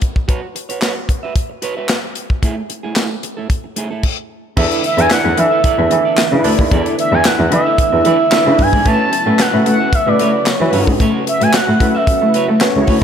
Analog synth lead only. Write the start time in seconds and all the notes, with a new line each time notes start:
4.86 E5
5.00 G#5
5.12 F#5
5.39 E5
7.00 E5
7.14 G#5
7.26 F#5
7.54 E5
8.62 G#5
8.88 A5
9.41 F#5
9.68 F#5
9.95 E5
10.08 D5
10.48 C#5
11.28 E5
11.42 G#5
11.55 F#5
11.96 E5